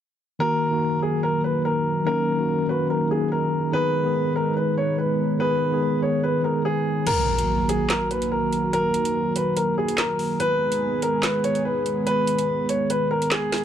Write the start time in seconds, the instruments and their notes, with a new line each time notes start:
0.39 tine electric piano D#3 A#3 F#4, analog synth pad F#3 A#3 D#4 A#4, grand piano A#4
0.71 tine electric piano D#3 A#3 F#4
1.02 grand piano G#4
1.23 grand piano A#4
1.44 grand piano B4
1.65 grand piano A#4
2.05 tine electric piano D#3 A#3 C#4, grand piano A#4
2.37 tine electric piano D#3 A#3 F#4
2.68 tine electric piano D#3 A#3 F#4, grand piano B4
2.90 grand piano A#4
3.09 tine electric piano D#3 A#3 G#4, grand piano G#4
3.32 grand piano A#4
3.72 tine electric piano D#3 B3 G#4, analog synth pad G#3 B3 B4, grand piano B4
4.04 tine electric piano D#3 B3 G#4
4.36 grand piano A#4
4.57 grand piano B4
4.78 grand piano C#5
4.98 grand piano B4
5.39 tine electric piano D#3 B3 G#4, grand piano B4
5.71 tine electric piano D#3 B3 G#4
6.01 tine electric piano D#3 B3 G#4, grand piano C#5
6.23 grand piano B4
6.42 tine electric piano D#3 B3 G#4, grand piano A#4
6.65 grand piano G#4
7.07 analog synth pad D#3 F#3 A#3 F#4, grand piano A#4, closed hi-hat, crash, impact
7.38 closed hi-hat
7.69 grand piano G#4, closed hi-hat
7.90 grand piano A#4, snare, clap, closed hi-hat
8.11 grand piano B4, closed hi-hat
8.22 closed hi-hat
8.32 grand piano A#4
8.53 closed hi-hat
8.73 grand piano A#4, closed hi-hat
8.94 closed hi-hat
9.05 closed hi-hat
9.36 grand piano B4, closed hi-hat
9.57 grand piano A#4, closed hi-hat
9.78 grand piano G#4
9.88 closed hi-hat
9.98 grand piano A#4, snare, clap
10.19 open hi-hat
10.40 analog synth pad D#3 G#3 B3 G#4, grand piano B4, closed hi-hat
10.72 closed hi-hat
11.02 grand piano A#4, closed hi-hat
11.23 grand piano B4, snare, clap, closed hi-hat
11.44 grand piano C#5, closed hi-hat
11.55 closed hi-hat
11.65 grand piano B4
11.86 closed hi-hat
12.07 grand piano B4, closed hi-hat
12.27 closed hi-hat
12.39 closed hi-hat
12.69 grand piano C#5, closed hi-hat
12.90 grand piano B4, closed hi-hat
13.11 grand piano A#4
13.22 closed hi-hat
13.31 grand piano G#4, snare, clap
13.52 snare, closed hi-hat, open hi-hat
13.58 closed hi-hat